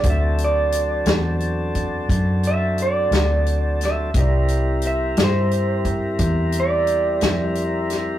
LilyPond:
<<
  \new Staff \with { instrumentName = "Clean electric guitar" } { \time 12/8 \key d \dorian \tempo 4. = 58 e''8 d''4 r2 e''8 d''4. e''8 | d''4 e''8 c''4 r4 d''2~ d''8 | }
  \new Staff \with { instrumentName = "Tonewheel organ" } { \time 12/8 \key d \dorian <fis c' d' a'>1. | <g c' e' bes'>1. | }
  \new Staff \with { instrumentName = "Fingered electric bass" } { \clef bass \time 12/8 \key d \dorian d,4. e,4. fis,4. d,4. | c,4. g,4. e,4. f,4. | }
  \new DrumStaff \with { instrumentName = "Drums" } \drummode { \time 12/8 <hh bd>8 hh8 hh8 <hh sn>8 hh8 <hh bd>8 <hh bd>8 hh8 hh8 <hh sn>8 hh8 <hh sn>8 | <hh bd>8 hh8 hh8 <hh sn>8 hh8 <hh bd>8 <hh bd>8 hh8 hh8 <hh sn>8 hh8 <hh sn>8 | }
>>